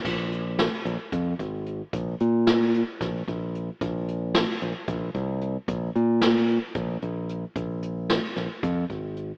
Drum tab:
CC |x------|-------|-------|-------|
HH |-xxxxxx|xxxxxxx|xxxxxxx|xxxxxxx|
SD |--o----|--o-o--|--o----|--o----|
BD |o---oo-|o---oo-|o---oo-|o---o--|

CC |-------|
HH |xxxxxxx|
SD |--oo---|
BD |o---oo-|